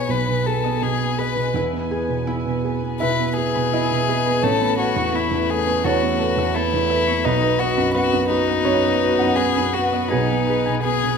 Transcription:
0.00 0.09 B1 medium
0.00 0.27 B2 soft
0.00 0.65 B3 soft
0.00 1.52 B3 medium
0.00 0.46 G#4 soft
0.00 0.47 B4 soft
0.00 1.36 B4 soft
0.00 1.52 B4 medium
0.00 0.12 C#5 medium
0.00 0.62 D#5 soft
0.00 1.15 D#5 medium
0.00 3.63 G#5 soft
0.00 4.44 G#5 soft
0.00 0.75 B5 soft
0.09 1.51 B1 soft
0.09 0.48 B4 medium
0.27 0.57 B2 soft
0.46 0.63 G#4 soft
0.46 0.84 A4 medium
0.46 0.63 B4 soft
0.64 0.94 B3 soft
0.64 1.18 D#5 soft
0.82 1.12 B2 soft
0.82 1.90 G#4 medium
0.82 1.20 G#4 medium
1.01 1.30 B3 soft
1.18 1.35 G#4 soft
1.18 1.35 B4 soft
1.18 1.56 B4 medium
1.18 1.59 D#5 soft
1.36 1.55 B2 soft
1.36 3.54 B4 soft
1.54 2.96 E2 medium
1.54 7.20 B3 soft
1.54 2.26 E4 medium
1.54 7.20 B4 soft
1.54 1.90 B4 medium
1.73 2.02 B3 soft
1.91 2.08 G#4 soft
1.91 4.25 G#4 medium
1.91 2.08 B4 soft
2.09 2.38 B2 soft
2.26 2.56 B3 soft
2.26 3.00 E4 medium
2.45 2.75 B2 soft
2.64 2.81 G#4 soft
2.64 2.81 B4 soft
2.83 3.12 B3 soft
3.00 3.30 B2 soft
3.00 3.72 E4 medium
3.00 3.35 B4 medium
3.00 3.68 E5 medium
3.20 3.48 B3 soft
3.37 3.53 G#4 soft
3.37 4.45 G#4 medium
3.37 3.54 B4 soft
3.55 3.84 B2 soft
3.55 4.07 B4 soft
3.73 4.01 B3 medium
3.73 7.27 E4 medium
3.73 4.40 D#5 medium
3.91 4.19 B2 soft
4.08 4.24 G#4 soft
4.08 7.23 B4 soft
4.08 4.25 B4 medium
4.26 4.44 B3 soft
4.26 4.46 G#4 medium
4.42 5.81 A1 medium
4.42 7.24 A3 medium
4.42 7.27 A3 medium
4.42 4.78 A4 medium
4.42 5.45 C#5 medium
4.60 4.89 B3 medium
4.60 7.27 B5 medium
4.78 5.16 F#4 medium
4.78 4.94 A4 medium
4.78 4.95 B4 medium
4.78 7.06 C#5 medium
4.96 5.25 E2 medium
4.96 7.27 C#6 medium
5.13 5.42 B3 medium
5.13 5.51 E4 medium
5.31 5.60 E2 medium
5.49 5.86 G#4 medium
5.49 5.65 A4 medium
5.49 5.65 B4 medium
5.67 5.95 B3 medium
5.84 6.13 E2 medium
5.84 6.56 F#4 medium
5.84 6.54 A4 medium
5.84 7.21 C#5 medium
6.02 6.31 B3 medium
6.19 6.36 A4 medium
6.19 6.36 B4 medium
6.37 6.65 E2 medium
6.37 6.88 E5 medium
6.55 6.83 B3 medium
6.55 7.27 E4 medium
6.55 7.27 A4 medium
6.74 7.01 E2 medium
6.90 7.06 A4 medium
6.90 7.06 B4 medium
6.90 7.27 E5 medium
7.07 7.25 B3 medium
7.07 7.27 C#5 medium
7.24 8.62 B1 medium
7.24 11.18 B3 medium
7.24 7.61 D#4 medium
7.24 10.10 F#4 medium
7.24 11.18 B4 medium
7.24 7.93 B4 medium
7.24 8.61 D#5 loud
7.42 7.70 B3 medium
7.42 7.76 B5 medium
7.59 7.94 F#4 medium
7.59 7.75 F#4 medium
7.59 7.76 B4 medium
7.59 9.91 D#5 medium
7.77 8.05 F#2 medium
7.77 8.29 B5 medium
7.94 8.23 B3 medium
7.94 8.28 F#4 medium
7.94 8.64 B4 medium
8.13 8.41 F#2 medium
8.29 9.38 D#4 medium
8.29 8.46 F#4 medium
8.29 8.47 B4 medium
8.29 11.18 B5 medium
8.49 8.77 B3 medium
8.65 8.94 F#2 medium
8.65 9.36 B4 medium
8.65 10.06 C#5 loud
8.83 9.12 B3 medium
9.02 9.18 F#4 medium
9.02 9.18 B4 medium
9.19 9.49 F#2 medium
9.19 9.72 F#5 medium
9.36 9.67 B3 medium
9.36 9.75 G#4 medium
9.36 10.45 B4 medium
9.57 9.86 F#2 soft
9.73 10.10 F#4 medium
9.73 9.91 F#4 soft
9.73 9.91 B4 medium
9.73 10.13 F#5 medium
9.92 10.11 B3 soft
9.92 11.18 D#5 medium
10.08 10.76 D#4 medium
10.08 11.18 G#4 medium
10.08 10.82 G#4 medium
10.08 10.48 B4 medium
10.13 11.18 B1 medium
10.29 10.59 B3 soft
10.29 10.64 G#5 medium
10.46 10.65 G#4 soft
10.46 11.18 B4 soft
10.46 10.65 B4 soft
10.66 10.96 B2 soft
10.66 11.18 G#5 medium
10.83 11.14 B3 soft
10.83 11.18 G#4 medium
11.04 11.18 B2 soft

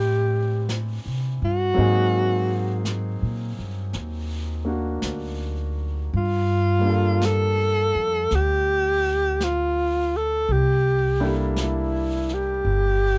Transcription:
0.00 1.01 A2 medium
0.00 1.78 E3 soft
0.00 1.75 C4 soft
0.00 1.78 D4 medium
0.00 1.78 E4 soft
0.00 0.72 G4 medium
0.00 1.78 C5 medium
0.69 brush sweep soft
0.69 snare soft
0.69 hi-hat pedal soft
1.06 1.39 C3 soft
1.42 1.75 G2 medium
1.42 2.84 F#4 loud
1.74 3.18 G#2 medium
1.74 6.11 F#3 soft
1.74 4.63 A#3 soft
1.74 6.12 C4 soft
1.74 brush sweep soft
1.78 6.13 D#4 soft
1.78 6.13 G#4 medium
2.85 brush sweep soft
2.85 snare soft
2.85 hi-hat pedal medium
3.22 3.55 A#2 soft
3.59 3.92 G2 soft
3.93 4.99 D#2 medium
3.93 brush sweep soft
3.93 snare soft
4.65 6.11 A#3 soft
4.65 6.12 D4 soft
4.65 6.13 F#4 soft
5.02 6.08 D2 medium
5.02 brush sweep soft
5.02 snare soft
5.02 hi-hat pedal soft
6.12 7.91 G2 medium
6.12 brush sweep soft
6.17 7.27 F4 medium
6.79 10.45 G3 soft
6.79 10.46 A#3 soft
6.84 10.48 D4 soft
6.84 10.49 F4 soft
6.90 10.51 A4 soft
7.21 brush sweep soft
7.21 snare soft
7.21 hi-hat pedal soft
7.26 8.37 A4 medium
7.95 8.29 F2 medium
8.31 10.45 D2 medium
8.31 brush sweep soft
8.31 snare soft
8.36 9.45 G4 medium
9.40 10.18 F4 medium
9.40 brush sweep soft
9.40 snare soft
9.40 hi-hat pedal soft
10.16 10.53 A4 medium
10.48 12.61 C2 medium
10.48 11.41 G4 medium
10.48 brush sweep soft
11.20 13.18 G3 soft
11.20 13.18 A#3 soft
11.20 13.18 D4 soft
11.20 13.18 E4 soft
11.20 13.18 A4 soft
11.56 brush sweep soft
11.56 snare soft
11.56 hi-hat pedal soft
11.62 12.36 E4 medium
12.29 snare soft
12.34 13.18 G4 medium
12.64 13.18 G1 medium
12.64 brush sweep soft

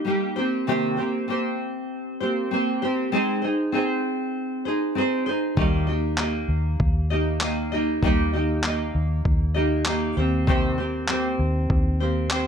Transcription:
0.05 0.36 G3 medium
0.05 0.36 A#3 medium
0.05 0.37 D#4 medium
0.05 0.35 G4 medium
0.36 0.67 A#3 soft
0.36 0.67 C4 soft
0.36 0.67 G4 soft
0.36 0.67 C5 medium
0.67 0.98 C3 medium
0.67 0.98 D#3 medium
0.67 0.98 A#3 medium
0.67 0.98 C4 medium
0.67 0.97 G4 medium
0.67 0.96 C5 medium
0.97 1.27 A#3 soft
0.97 1.27 C4 soft
0.97 1.29 G4 soft
0.97 1.28 C5 soft
1.28 2.20 A#3 medium
1.28 2.23 C4 medium
1.28 2.20 G4 medium
1.28 2.20 C5 medium
2.20 2.51 A#3 soft
2.20 2.50 C4 soft
2.20 2.51 G4 medium
2.20 2.51 C5 medium
2.51 2.82 A#3 medium
2.51 2.82 C4 medium
2.51 2.82 G4 medium
2.51 2.81 C5 medium
2.82 3.13 A#3 soft
2.82 3.11 C4 soft
2.82 3.13 G4 soft
2.82 3.12 C5 medium
3.12 3.43 G#3 medium
3.12 3.43 C4 medium
3.12 3.43 D#4 medium
3.12 3.43 G#4 medium
3.12 3.41 C5 medium
3.42 3.72 D#4 soft
3.42 3.73 G#4 soft
3.42 3.73 C5 medium
3.72 4.65 C4 medium
3.72 4.67 D#4 medium
3.72 4.65 G#4 medium
3.72 4.64 C5 medium
4.65 4.95 D#4 soft
4.65 4.96 G#4 soft
4.65 4.96 C5 medium
4.95 5.26 C4 medium
4.95 5.27 D#4 medium
4.95 5.26 G#4 medium
4.95 5.25 C5 medium
5.26 5.56 D#4 soft
5.26 5.58 G#4 soft
5.26 5.57 C5 medium
5.57 6.45 D#2 medium
5.57 5.88 D#3 medium
5.57 5.88 G3 medium
5.57 5.88 A#3 medium
5.57 5.88 D#4 medium
5.57 5.87 G4 medium
5.57 5.86 D#5 medium
5.57 kick loud
5.87 6.16 A#3 soft
5.87 6.17 D#4 soft
5.87 6.18 G4 soft
5.87 6.18 D#5 medium
6.17 7.13 A#3 medium
6.17 7.12 D#4 medium
6.17 7.11 G4 medium
6.17 7.10 D#5 medium
6.17 clap medium
6.49 6.77 D#2 medium
6.80 7.98 D#2 medium
6.80 kick loud
7.10 7.39 A#3 soft
7.10 7.41 D#4 soft
7.10 7.41 G4 soft
7.10 7.41 D#5 medium
7.41 7.71 A#3 medium
7.41 7.72 D#4 medium
7.41 7.72 G4 medium
7.41 7.71 D#5 medium
7.41 clap loud
7.72 8.02 A#3 soft
7.72 8.02 D#4 soft
7.72 8.03 G4 medium
7.72 8.02 D#5 medium
8.02 8.90 D#2 loud
8.02 8.33 D#3 medium
8.02 8.33 G3 medium
8.02 8.33 A#3 medium
8.02 8.34 D#4 medium
8.02 8.33 G4 medium
8.02 8.32 D#5 medium
8.02 kick loud
8.33 8.62 A#3 soft
8.33 8.63 D#4 soft
8.33 8.64 G4 soft
8.33 8.64 D#5 soft
8.63 9.57 A#3 medium
8.63 9.56 D#4 medium
8.63 9.55 G4 medium
8.63 9.54 D#5 medium
8.63 clap medium
8.95 9.23 D#2 medium
9.25 10.13 D#2 medium
9.25 kick loud
9.54 9.84 A#3 soft
9.54 9.85 D#4 soft
9.54 9.86 G4 medium
9.54 9.85 D#5 medium
9.85 10.16 A#3 medium
9.85 10.17 D#4 medium
9.85 10.16 G4 medium
9.85 10.16 D#5 medium
9.85 clap loud
10.17 11.35 D#2 medium
10.17 10.47 A#3 soft
10.17 10.47 C4 soft
10.17 10.48 G4 medium
10.17 10.47 C5 medium
10.47 10.78 C3 medium
10.47 10.78 D#3 medium
10.47 10.78 A#3 medium
10.47 10.78 C4 medium
10.47 10.78 G4 medium
10.47 10.77 C5 medium
10.47 kick loud
10.78 11.08 A#3 soft
10.78 11.07 C4 soft
10.78 11.09 G4 soft
10.78 11.08 C5 medium
11.08 12.01 A#3 medium
11.08 12.02 C4 medium
11.08 12.00 G4 medium
11.08 12.00 C5 medium
11.08 clap medium
11.39 11.67 D#2 medium
11.70 12.47 D#2 medium
11.70 kick loud
12.00 12.30 A#3 soft
12.00 12.29 C4 soft
12.00 12.31 G4 soft
12.00 12.31 C5 medium
12.30 12.47 A#3 medium
12.30 12.47 C4 medium
12.30 12.47 G4 medium
12.30 12.47 C5 medium
12.30 clap loud

